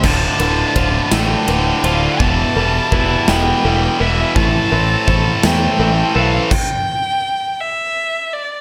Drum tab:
CC |x-----|------|------|x-----|
RD |-xxxxx|------|------|------|
SD |---o--|---o--|---o--|------|
BD |o-o---|o-o---|o-o---|o-----|